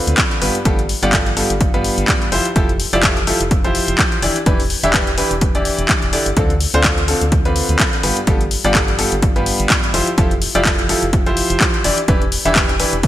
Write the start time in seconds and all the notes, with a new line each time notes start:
Already playing: D3 C4 D4 F4 B4
0.07 D2, closed hi-hat
0.18 kick, clap, closed hi-hat
0.31 closed hi-hat
0.42 G1 G2 B3 F4 G4 B4, open hi-hat
0.55 closed hi-hat
0.65 G1 G2 B3 F4 G4 A4, kick, closed hi-hat
0.79 closed hi-hat
0.89 open hi-hat
1.03 G1 G2 B3 F4 G4 D5, closed hi-hat
1.13 G2 B3 F4 G4 A4, kick, clap, closed hi-hat
1.26 closed hi-hat
1.37 G2 B3 F4 G4 A4, open hi-hat
1.50 G1, closed hi-hat
1.61 kick, closed hi-hat
1.74 G2 B3 F4 G4 B4, closed hi-hat
1.84 open hi-hat
1.98 G1, closed hi-hat
2.08 kick, clap, closed hi-hat
2.22 closed hi-hat
2.32 F1 F3 E4 F4 G4 C5, open hi-hat
2.45 closed hi-hat
2.56 F1 F3 E4 F4 G4 A4, kick, closed hi-hat
2.69 closed hi-hat
2.80 open hi-hat
2.93 F1 F3 E4 F4 G4 D5, closed hi-hat
3.03 F3 E4 F4 G4 A4, kick, clap, closed hi-hat
3.17 closed hi-hat
3.27 F3 E4 F4 G4 A4, open hi-hat
3.41 F1, closed hi-hat
3.51 kick, closed hi-hat
3.64 F3 E4 F4 G4 C5, closed hi-hat
3.75 open hi-hat
3.88 F1, closed hi-hat
3.99 kick, clap, closed hi-hat
4.12 closed hi-hat
4.22 E1 E3 D4 E4 G4 D5, open hi-hat
4.36 closed hi-hat
4.46 E1 E3 D4 E4 G4 B4, kick, closed hi-hat
4.60 open hi-hat
4.70 open hi-hat
4.83 E1 E3 D4 E4 G4 E5, closed hi-hat
4.94 E3 D4 E4 B4, kick, clap, closed hi-hat
5.07 closed hi-hat
5.18 E3 D4 E4 G4 B4, open hi-hat
5.31 E1, closed hi-hat
5.41 kick, closed hi-hat
5.55 E3 D4 E4 G4 D5, closed hi-hat
5.65 open hi-hat
5.79 E1, closed hi-hat
5.89 kick, clap, closed hi-hat
6.02 E1, closed hi-hat
6.13 D3 D4 E4 G4 D5, open hi-hat
6.26 G1, closed hi-hat
6.37 D2 D3 C4 D4 F4 A4, kick, closed hi-hat
6.50 closed hi-hat
6.60 open hi-hat
6.74 D2 D3 C4 D4 F4 C5, closed hi-hat
6.84 D3 C4 D4 A4, kick, clap, closed hi-hat
6.98 closed hi-hat
7.08 D3 C4 D4 F4 A4, open hi-hat
7.22 D2, closed hi-hat
7.32 kick, closed hi-hat
7.45 D3 C4 D4 F4 B4, closed hi-hat
7.56 open hi-hat
7.69 D2, closed hi-hat
7.80 kick, clap, closed hi-hat
7.93 closed hi-hat
8.03 G1 G2 B3 F4 G4 B4, open hi-hat
8.17 closed hi-hat
8.27 G1 G2 B3 F4 G4 A4, kick, closed hi-hat
8.41 closed hi-hat
8.51 open hi-hat
8.64 G1 G2 B3 F4 G4 D5, closed hi-hat
8.75 G2 B3 F4 G4 A4, kick, clap, closed hi-hat
8.88 closed hi-hat
8.99 G2 B3 F4 G4 A4, open hi-hat
9.12 G1, closed hi-hat
9.22 kick, closed hi-hat
9.36 G2 B3 F4 G4 B4, closed hi-hat
9.46 open hi-hat
9.60 G1, closed hi-hat
9.70 kick, clap, closed hi-hat
9.84 closed hi-hat
9.94 F1 F3 E4 F4 G4 C5, open hi-hat
10.07 closed hi-hat
10.18 F1 F3 E4 F4 G4 A4, kick, closed hi-hat
10.31 closed hi-hat
10.42 open hi-hat
10.55 F1 F3 E4 F4 G4 D5, closed hi-hat
10.65 F3 E4 F4 A4, kick, clap, closed hi-hat
10.79 closed hi-hat
10.89 F3 E4 F4 G4 A4, open hi-hat
11.03 F1, closed hi-hat
11.13 kick, closed hi-hat
11.26 F3 E4 F4 G4 C5, closed hi-hat
11.37 open hi-hat
11.50 F1, closed hi-hat
11.61 kick, clap, closed hi-hat
11.74 closed hi-hat
11.84 E1 E3 D4 E4 G4 D5, open hi-hat
11.98 closed hi-hat
12.08 E1 E3 D4 E4 G4 B4, kick, closed hi-hat
12.22 closed hi-hat
12.32 open hi-hat
12.45 E1 E3 D4 E4 G4 E5, closed hi-hat
12.56 E3 D4 G4 B4, kick, clap, closed hi-hat
12.69 closed hi-hat
12.80 E3 D4 E4 G4 B4, open hi-hat
12.93 E1, closed hi-hat
13.03 kick, closed hi-hat